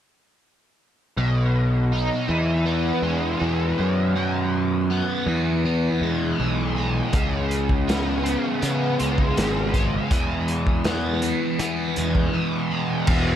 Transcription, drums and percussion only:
7.13 kick, closed hi-hat
7.51 closed hi-hat
7.69 kick
7.89 snare, closed hi-hat
8.26 closed hi-hat
8.62 closed hi-hat
9.00 closed hi-hat
9.18 kick
9.37 snare, closed hi-hat
9.74 kick, closed hi-hat
10.11 kick, closed hi-hat
10.48 closed hi-hat
10.67 kick
10.84 snare, closed hi-hat
11.22 closed hi-hat
11.59 closed hi-hat
11.96 closed hi-hat
12.15 kick
13.07 kick, crash

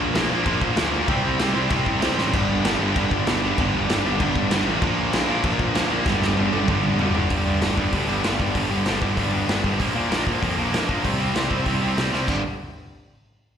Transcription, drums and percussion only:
0.15 snare, crash
0.46 kick, crash
0.61 kick
0.77 snare, crash
1.08 kick, crash
1.39 snare, crash
1.70 kick, crash
1.86 kick
2.02 snare, crash
2.18 snare
2.34 kick, crash
2.65 snare, crash
2.96 kick, crash
3.11 kick
3.27 snare, crash
3.58 kick, crash
3.90 snare, crash
4.20 kick, crash
4.36 kick
4.51 snare, crash
4.82 kick, crash
5.13 snare, crash
5.44 kick, crash
5.59 kick
5.75 snare, crash
6.06 kick, snare
6.22 snare
6.37 high tom
6.53 high tom
6.68 kick, mid tom
6.84 mid tom
6.99 floor tom
7.15 floor tom
7.30 kick, open hi-hat
7.62 snare, open hi-hat
7.77 kick
7.92 kick, open hi-hat
8.24 snare, open hi-hat
8.40 kick
8.55 kick, open hi-hat
8.86 snare, open hi-hat
9.02 kick
9.17 kick, open hi-hat
9.49 snare, open hi-hat
9.64 kick
9.80 kick, open hi-hat
10.11 snare, open hi-hat
10.27 kick
10.43 kick, open hi-hat
10.74 snare, open hi-hat
10.89 kick
11.05 kick, open hi-hat
11.35 snare, open hi-hat
11.51 kick
11.66 kick, open hi-hat
11.98 snare, open hi-hat
12.14 snare
12.28 kick, crash

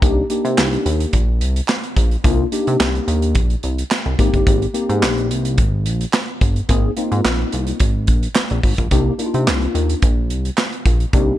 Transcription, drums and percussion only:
0.02 kick, closed hi-hat
0.30 closed hi-hat
0.45 closed hi-hat
0.58 snare, clap
0.73 closed hi-hat
0.86 closed hi-hat
1.00 closed hi-hat
1.13 kick, closed hi-hat
1.41 closed hi-hat
1.56 closed hi-hat
1.68 snare, clap
1.70 clap
1.83 closed hi-hat
1.97 kick, closed hi-hat
2.11 closed hi-hat
2.24 kick, closed hi-hat
2.52 closed hi-hat
2.67 closed hi-hat
2.80 snare, clap
2.95 closed hi-hat
3.08 closed hi-hat
3.22 closed hi-hat
3.35 kick, closed hi-hat
3.50 closed hi-hat
3.63 closed hi-hat
3.78 closed hi-hat
3.91 snare, clap
4.19 kick, closed hi-hat
4.34 kick, closed hi-hat
4.47 kick, closed hi-hat
4.62 closed hi-hat
4.74 closed hi-hat
4.89 closed hi-hat
5.03 snare, clap
5.18 closed hi-hat
5.31 closed hi-hat
5.45 closed hi-hat
5.58 kick, closed hi-hat
5.86 closed hi-hat
6.01 closed hi-hat
6.13 snare, clap
6.41 kick, closed hi-hat
6.56 closed hi-hat
6.69 kick, closed hi-hat
6.97 closed hi-hat
7.12 closed hi-hat
7.25 snare, clap
7.52 closed hi-hat
7.67 closed hi-hat
7.80 kick, closed hi-hat
8.07 kick, closed hi-hat
8.23 closed hi-hat
8.35 snare, clap
8.50 closed hi-hat
8.63 kick, open hi-hat
8.78 kick, closed hi-hat
8.91 kick, closed hi-hat
9.19 closed hi-hat
9.34 closed hi-hat
9.47 snare, clap
9.62 closed hi-hat
9.75 closed hi-hat
9.89 closed hi-hat
10.02 kick, closed hi-hat
10.30 closed hi-hat
10.45 closed hi-hat
10.57 snare, clap
10.72 closed hi-hat
10.86 kick, closed hi-hat
11.00 closed hi-hat
11.13 kick, closed hi-hat

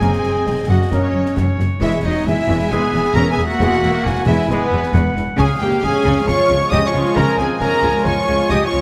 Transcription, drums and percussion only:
0.02 concert bass drum, snare
0.13 snare
0.24 snare
0.47 concert bass drum, snare
0.92 concert bass drum, snare
1.26 snare
1.37 concert bass drum, snare
1.60 snare
1.82 concert bass drum, snare, crash
2.27 concert bass drum, snare
2.72 concert bass drum, snare
2.94 snare
3.05 snare
3.16 concert bass drum, snare
3.39 snare
3.50 snare
3.61 concert bass drum, snare
3.73 snare
3.83 snare
4.06 concert bass drum, snare
4.50 concert bass drum, snare
4.83 snare
4.95 concert bass drum, snare
5.17 snare
5.39 concert bass drum, snare, crash
5.84 concert bass drum, snare
6.28 concert bass drum, snare
6.50 snare
6.61 snare
6.72 concert bass drum, snare
6.94 snare
7.06 snare
7.17 concert bass drum, snare
7.28 snare
7.38 snare
7.61 concert bass drum, snare
8.06 concert bass drum, snare
8.39 snare
8.50 concert bass drum, snare
8.72 snare

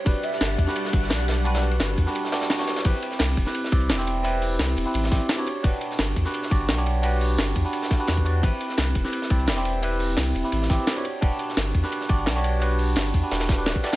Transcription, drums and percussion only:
0.06 kick, closed hi-hat, ride
0.23 closed hi-hat, ride
0.32 snare
0.41 snare, closed hi-hat, ride
0.58 kick, closed hi-hat, ride
0.68 snare
0.76 closed hi-hat, ride
0.85 snare
0.93 kick, closed hi-hat, ride
1.03 snare
1.10 snare, closed hi-hat, ride
1.19 snare
1.28 snare, closed hi-hat, ride
1.45 closed hi-hat, ride
1.54 snare, ride
1.63 closed hi-hat
1.71 ride
1.80 snare, closed hi-hat, ride
1.97 kick, closed hi-hat, ride
2.07 snare
2.15 closed hi-hat, ride
2.25 snare
2.32 snare, closed hi-hat, ride
2.41 snare, ride
2.50 snare, closed hi-hat, ride
2.59 snare, ride
2.67 snare, closed hi-hat, ride
2.76 snare, ride
2.84 kick, closed hi-hat, crash, ride
3.02 closed hi-hat, ride
3.11 snare
3.19 snare, closed hi-hat, ride
3.37 kick, closed hi-hat, ride
3.46 snare
3.55 closed hi-hat, ride
3.64 snare
3.72 kick, closed hi-hat, ride
3.81 closed hi-hat
3.89 snare, closed hi-hat, ride
4.00 snare
4.07 closed hi-hat, ride
4.24 closed hi-hat, ride
4.42 closed hi-hat, open hi-hat
4.59 snare, closed hi-hat, ride
4.77 closed hi-hat, ride
4.94 closed hi-hat, ride
5.04 snare
5.12 kick, snare, closed hi-hat, ride
5.21 closed hi-hat
5.29 snare, closed hi-hat, ride
5.39 ride
5.47 closed hi-hat, ride
5.64 kick, closed hi-hat, ride
5.81 closed hi-hat, ride
5.91 snare
5.99 snare, closed hi-hat, ride
6.16 kick, closed hi-hat, ride
6.26 snare
6.34 closed hi-hat, ride
6.43 snare
6.51 kick, closed hi-hat, ride
6.60 closed hi-hat
6.69 snare, closed hi-hat, ride
6.78 snare
6.86 closed hi-hat, ride
7.03 closed hi-hat, ride
7.21 closed hi-hat, open hi-hat
7.38 snare, closed hi-hat, ride
7.56 kick, closed hi-hat, ride
7.73 closed hi-hat, ride
7.82 snare
7.90 kick, snare, closed hi-hat, ride
8.00 closed hi-hat
8.07 snare, closed hi-hat, ride
8.17 kick, ride
8.26 closed hi-hat, ride
8.43 kick, closed hi-hat, ride
8.61 closed hi-hat, ride
8.69 snare
8.78 snare, closed hi-hat, ride
8.95 kick, closed hi-hat, ride
9.05 snare
9.13 closed hi-hat, ride
9.22 snare
9.30 kick, closed hi-hat, ride
9.40 closed hi-hat
9.48 snare, closed hi-hat, ride
9.57 snare
9.65 closed hi-hat, ride
9.83 closed hi-hat, ride
10.00 closed hi-hat, open hi-hat
10.17 snare, closed hi-hat, ride
10.35 closed hi-hat, ride
10.52 closed hi-hat, ride
10.62 snare
10.70 kick, snare, closed hi-hat, ride
10.79 closed hi-hat
10.87 snare, closed hi-hat, ride
10.96 ride
11.05 closed hi-hat, ride
11.22 kick, closed hi-hat, ride
11.39 closed hi-hat, ride
11.49 snare
11.57 snare, closed hi-hat, ride
11.74 kick, closed hi-hat, ride
11.84 snare
11.92 closed hi-hat, ride
12.01 snare
12.09 kick, closed hi-hat, ride
12.19 closed hi-hat
12.26 snare, closed hi-hat, ride
12.36 snare
12.44 closed hi-hat, ride
12.62 closed hi-hat, ride
12.71 closed hi-hat
12.78 closed hi-hat, open hi-hat
12.96 snare, closed hi-hat, ride
13.14 kick, closed hi-hat, ride
13.31 snare, closed hi-hat, ride
13.40 snare, ride
13.49 kick, snare, closed hi-hat, ride
13.58 closed hi-hat
13.66 snare, closed hi-hat, ride
13.76 kick, closed hi-hat, ride
13.84 snare, closed hi-hat, ride
13.93 snare

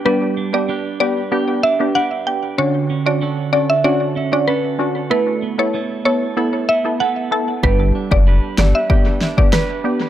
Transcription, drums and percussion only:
7.63 kick
8.11 kick
8.58 cross-stick, snare
8.90 kick
9.21 snare
9.38 kick
9.53 cross-stick, snare

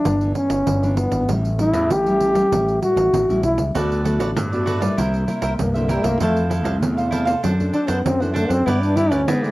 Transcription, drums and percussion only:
0.05 pandeiro
0.21 pandeiro
0.35 pandeiro
0.50 pandeiro
0.67 pandeiro
0.83 pandeiro
0.97 pandeiro
1.12 pandeiro
1.29 pandeiro
1.45 pandeiro
1.59 pandeiro
1.73 pandeiro
1.90 pandeiro
2.06 pandeiro
2.20 pandeiro
2.35 pandeiro
2.52 pandeiro
2.68 pandeiro
2.82 pandeiro
2.97 pandeiro
3.14 pandeiro
3.30 pandeiro
3.43 pandeiro
3.58 pandeiro
3.75 pandeiro
3.92 pandeiro
4.05 pandeiro
4.20 pandeiro
4.37 pandeiro
4.53 pandeiro
4.67 pandeiro
4.82 pandeiro
4.98 pandeiro
5.14 pandeiro
5.28 pandeiro
5.42 pandeiro
5.59 pandeiro
5.75 pandeiro
5.89 pandeiro
6.04 pandeiro
6.20 pandeiro
6.36 pandeiro
6.51 pandeiro
6.65 pandeiro
6.83 pandeiro
6.98 pandeiro
7.12 pandeiro
7.27 pandeiro
7.44 pandeiro
7.60 pandeiro
7.74 pandeiro
7.88 pandeiro
8.06 pandeiro
8.22 pandeiro
8.36 pandeiro
8.50 pandeiro
8.68 pandeiro
8.83 pandeiro
8.97 pandeiro
9.12 pandeiro
9.28 pandeiro
9.44 pandeiro

